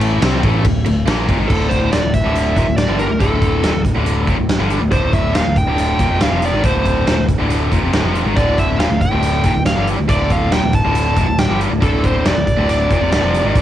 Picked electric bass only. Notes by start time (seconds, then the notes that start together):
Already playing: A1
0.21 C2
0.43 A1
0.65 D1
0.86 D1
1.07 A#1
1.29 D#1
1.38 G#1
1.50 D1
1.93 D#1
2.03 D1
2.25 D1
2.57 D#1
2.68 D1
2.89 G1
3.10 D1
3.21 D1
3.63 D#1
3.75 D1
3.96 D1
4.27 D#1
4.38 D1
4.60 G1
4.81 D1
4.92 D1
5.35 D#1
5.46 D1
5.68 D1
5.99 D#1
6.10 F1
6.21 D1
6.31 F1
6.53 G#1
6.64 D1
7.07 D#1
7.19 D1
7.40 D1
7.72 D#1
7.83 F1
7.93 D1
8.04 F1
8.26 G#1
8.37 D1
8.79 D#1
8.90 D1
9.12 D1
9.44 D#1
9.55 D1
9.77 G1
9.98 D1
10.09 D1
10.53 D#1
10.64 D1
10.85 D1
11.16 D#1
11.28 D1
11.50 G1
11.71 D1
11.82 D1
12.26 D#1
12.37 D1
12.58 D1
12.91 D#1
13.01 F1
13.12 D1
13.22 F1
13.44 G#1
13.55 D1